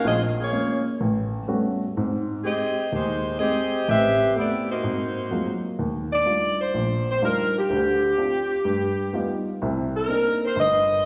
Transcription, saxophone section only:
0.06 C4 F4 G#4 D#5
0.40 A#3 F4 G#4 C#5
2.44 C4 G4 G#4 D#5
2.93 G#3 D#4 G4 C5
3.39 C4 G4 G#4 D#5
3.88 C4 G4 B4 E5
4.37 B3 E4 G4 D5
4.70 A#3 D#4 F#4 C5
6.13 D5
6.61 C5
7.10 C5
7.25 A#4
7.58 G4
9.96 A#4
10.45 C5
10.59 D#5

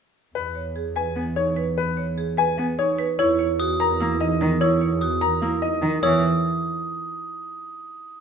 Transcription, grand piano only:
0.35 B4
0.96 G#5
1.36 C#5
1.78 B4
2.38 G#5
2.79 C#5
3.19 C#5
3.80 A#5
4.21 D#5
4.61 C#5
5.21 A#5
5.62 D#5
6.03 C#5

